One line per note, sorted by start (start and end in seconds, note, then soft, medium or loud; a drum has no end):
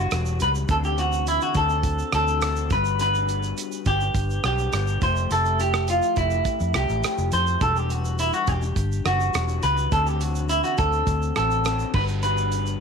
0.00 0.10 E3 medium
0.00 0.11 G3 medium
0.00 0.12 D4 medium
0.00 0.12 F#4 medium
0.00 0.37 F#4 loud
0.11 0.42 E1 loud
0.11 0.38 E3 medium
0.11 0.39 G3 medium
0.11 0.40 D4 medium
0.11 0.41 F#4 medium
0.11 cross-stick loud
0.11 closed hi-hat medium
0.11 shaker medium
0.25 shaker medium
0.40 0.64 C#2 medium
0.40 0.68 E3 medium
0.40 0.69 G3 medium
0.40 0.69 D4 medium
0.40 0.69 F#4 medium
0.40 0.50 B4 loud
0.40 closed hi-hat medium
0.40 shaker medium
0.55 shaker medium
0.69 1.38 D2 loud
0.69 1.58 D3 medium
0.69 1.54 E3 medium
0.69 1.55 C4 medium
0.69 1.56 D4 medium
0.69 1.57 F#4 medium
0.69 0.76 A4 loud
0.69 kick loud
0.69 closed hi-hat medium
0.69 shaker medium
0.84 0.99 G4 medium
0.84 shaker medium
0.98 1.28 F#4 medium
0.98 closed hi-hat medium
0.98 shaker medium
1.13 shaker medium
1.27 1.41 E4 medium
1.27 closed hi-hat medium
1.27 shaker medium
1.41 1.56 F#4 medium
1.41 shaker medium
1.55 2.01 D2 loud
1.55 1.70 E3 medium
1.55 1.70 C4 medium
1.55 1.70 D4 medium
1.55 1.69 F#4 medium
1.55 2.13 A4 loud
1.55 kick medium
1.55 closed hi-hat medium
1.55 shaker medium
1.69 2.13 C4 soft
1.69 2.13 D4 medium
1.69 2.13 F#4 medium
1.69 shaker soft
1.83 kick medium
1.83 closed hi-hat medium
1.83 shaker medium
1.99 shaker soft
2.13 2.72 D2 medium
2.13 2.41 E3 medium
2.13 2.42 C4 medium
2.13 2.42 D4 medium
2.13 2.43 F#4 medium
2.13 2.72 A4 loud
2.13 cross-stick loud
2.13 closed hi-hat soft
2.13 shaker soft
2.28 shaker medium
2.42 2.70 E3 medium
2.42 2.71 C4 medium
2.42 2.71 D4 medium
2.42 2.72 F#4 medium
2.42 cross-stick loud
2.42 closed hi-hat medium
2.42 shaker medium
2.56 shaker medium
2.70 3.52 G1 loud
2.70 2.98 G3 medium
2.70 2.99 B3 medium
2.70 3.00 D4 medium
2.70 3.00 F#4 medium
2.70 3.00 B4 loud
2.70 kick loud
2.70 closed hi-hat medium
2.70 shaker medium
2.85 shaker medium
2.99 3.85 G3 medium
2.99 3.86 B3 medium
2.99 3.86 D4 medium
2.99 3.87 F#4 medium
2.99 3.87 B4 loud
2.99 closed hi-hat medium
2.99 shaker medium
3.14 shaker medium
3.29 closed hi-hat medium
3.29 shaker medium
3.43 shaker medium
3.58 closed hi-hat medium
3.58 shaker medium
3.72 shaker medium
3.86 4.09 G1 loud
3.86 4.01 G3 medium
3.86 4.01 B3 medium
3.86 4.00 D4 medium
3.86 4.02 F#4 medium
3.86 4.44 G4 loud
3.86 kick medium
3.86 closed hi-hat medium
3.86 shaker medium
4.00 4.43 B3 soft
4.00 4.44 D4 medium
4.00 shaker soft
4.14 4.38 G1 loud
4.14 kick loud
4.14 closed hi-hat medium
4.14 shaker medium
4.30 shaker soft
4.44 4.67 B1 medium
4.44 4.71 G3 medium
4.44 4.72 B3 medium
4.44 4.73 D4 medium
4.44 4.73 F#4 medium
4.44 5.03 G4 loud
4.44 cross-stick loud
4.44 closed hi-hat soft
4.44 shaker soft
4.58 shaker medium
4.73 4.96 G1 loud
4.73 5.01 G3 medium
4.73 5.02 B3 medium
4.73 5.02 D4 medium
4.73 5.03 F#4 medium
4.73 cross-stick loud
4.73 closed hi-hat medium
4.73 shaker medium
4.87 shaker medium
5.01 5.25 F1 loud
5.01 5.29 F3 medium
5.01 5.30 A3 medium
5.01 5.30 E4 medium
5.01 5.31 G4 medium
5.01 5.32 C5 loud
5.01 kick loud
5.01 closed hi-hat medium
5.01 shaker medium
5.16 shaker medium
5.30 6.00 F1 loud
5.30 6.16 F3 medium
5.30 6.16 A3 medium
5.30 6.18 E4 medium
5.30 6.18 G4 medium
5.30 5.58 A4 medium
5.30 closed hi-hat medium
5.30 shaker medium
5.45 shaker soft
5.60 5.89 G4 loud
5.60 closed hi-hat medium
5.60 shaker medium
5.74 cross-stick loud
5.74 shaker medium
5.88 6.17 F4 medium
5.88 closed hi-hat medium
5.88 shaker medium
6.02 shaker medium
6.16 6.40 F1 loud
6.16 6.31 F3 medium
6.16 6.32 A3 medium
6.16 6.75 E4 medium
6.16 6.31 E4 medium
6.16 6.30 G4 medium
6.16 kick medium
6.16 closed hi-hat medium
6.16 shaker medium
6.30 6.74 A3 soft
6.30 6.74 E4 medium
6.30 6.75 G4 medium
6.30 shaker soft
6.45 kick loud
6.45 closed hi-hat medium
6.45 shaker medium
6.60 6.72 F2 medium
6.60 shaker soft
6.74 6.87 C2 medium
6.74 7.02 F3 medium
6.74 7.03 A3 medium
6.74 7.04 E4 medium
6.74 7.29 G4 medium
6.74 7.04 G4 medium
6.74 cross-stick loud
6.74 closed hi-hat soft
6.74 shaker soft
6.89 7.01 A1 medium
6.89 shaker medium
7.03 7.31 F3 medium
7.03 7.32 A3 medium
7.03 7.32 E4 medium
7.03 7.33 G4 medium
7.03 muted fingered electric bass stroke soft
7.03 cross-stick loud
7.03 closed hi-hat medium
7.03 shaker medium
7.18 7.30 F1 medium
7.18 shaker medium
7.32 7.56 F2 medium
7.32 7.60 F3 medium
7.32 7.61 A3 medium
7.32 7.61 E4 medium
7.32 7.62 G4 medium
7.32 7.62 C5 loud
7.32 closed hi-hat medium
7.32 shaker medium
7.47 shaker medium
7.61 8.30 E1 loud
7.61 8.47 E3 medium
7.61 8.47 G3 medium
7.61 8.49 D4 medium
7.61 8.49 F#4 medium
7.61 7.77 A4 loud
7.61 kick loud
7.61 closed hi-hat medium
7.61 shaker medium
7.76 7.91 G4 medium
7.76 shaker soft
7.90 8.19 F#4 medium
7.90 closed hi-hat medium
7.90 shaker medium
8.05 shaker medium
8.19 8.33 E4 medium
8.19 closed hi-hat medium
8.19 shaker medium
8.33 8.48 F#4 medium
8.33 shaker medium
8.47 8.71 E1 loud
8.47 8.62 E3 medium
8.47 8.63 G3 medium
8.47 8.62 D4 medium
8.47 8.63 F#4 medium
8.47 9.05 G4 medium
8.47 kick medium
8.47 closed hi-hat medium
8.47 shaker medium
8.62 9.04 G3 medium
8.62 9.05 D4 medium
8.62 shaker soft
8.76 9.00 G1 medium
8.76 kick medium
8.76 closed hi-hat medium
8.76 shaker medium
8.92 shaker soft
9.04 9.29 F#1 medium
9.04 9.33 E3 medium
9.04 9.33 G3 medium
9.04 9.34 D4 medium
9.04 9.63 F#4 loud
9.04 9.35 F#4 medium
9.04 cross-stick loud
9.04 closed hi-hat soft
9.04 shaker soft
9.20 shaker soft
9.34 9.58 E1 medium
9.34 9.61 E3 medium
9.34 9.62 G3 medium
9.34 9.63 D4 medium
9.34 9.63 F#4 medium
9.34 cross-stick loud
9.34 closed hi-hat medium
9.34 shaker medium
9.48 shaker medium
9.62 9.87 C#2 medium
9.62 9.91 E3 medium
9.62 9.92 G3 medium
9.62 9.91 D4 medium
9.62 9.92 F#4 medium
9.62 9.92 B4 loud
9.62 closed hi-hat medium
9.62 shaker medium
9.77 shaker medium
9.92 10.61 D2 loud
9.92 10.81 D3 medium
9.92 10.77 E3 medium
9.92 10.78 C4 medium
9.92 10.79 D4 medium
9.92 10.80 F#4 medium
9.92 10.07 A4 medium
9.92 kick loud
9.92 closed hi-hat medium
9.92 shaker medium
10.07 10.21 G4 medium
10.07 shaker soft
10.21 10.49 F#4 medium
10.21 closed hi-hat medium
10.21 shaker medium
10.35 shaker medium
10.49 10.63 E4 medium
10.49 closed hi-hat medium
10.49 shaker medium
10.64 10.78 F#4 medium
10.64 shaker medium
10.78 11.02 D2 loud
10.78 10.93 E3 medium
10.78 10.93 C4 medium
10.78 10.93 D4 medium
10.78 10.92 F#4 medium
10.78 11.35 A4 loud
10.78 kick medium
10.78 closed hi-hat medium
10.78 shaker medium
10.93 11.36 C4 soft
10.93 11.37 D4 soft
10.93 11.36 F#4 medium
10.93 shaker soft
11.07 11.30 D2 loud
11.07 kick loud
11.07 closed hi-hat medium
11.07 shaker medium
11.22 shaker soft
11.36 11.83 A1 medium
11.36 11.64 E3 medium
11.36 11.65 C4 medium
11.36 11.65 D4 medium
11.36 11.66 F#4 medium
11.36 11.94 A4 medium
11.36 cross-stick medium
11.36 closed hi-hat soft
11.36 shaker soft
11.51 shaker medium
11.65 11.93 E3 medium
11.65 11.94 C4 medium
11.65 11.94 D4 medium
11.65 11.95 F#4 medium
11.65 cross-stick loud
11.65 closed hi-hat medium
11.65 shaker medium
11.79 shaker medium
11.94 12.75 G1 loud
11.94 12.21 G3 medium
11.94 12.22 B3 medium
11.94 12.22 D4 medium
11.94 12.23 F#4 medium
11.94 12.02 B4 medium
11.94 kick loud
11.94 crash medium
12.08 shaker medium
12.23 12.80 G3 medium
12.23 12.80 B3 medium
12.23 12.80 D4 medium
12.23 12.80 F#4 loud
12.23 12.80 B4 loud
12.23 closed hi-hat medium
12.23 shaker medium
12.37 shaker medium
12.52 closed hi-hat medium
12.52 shaker medium
12.66 shaker medium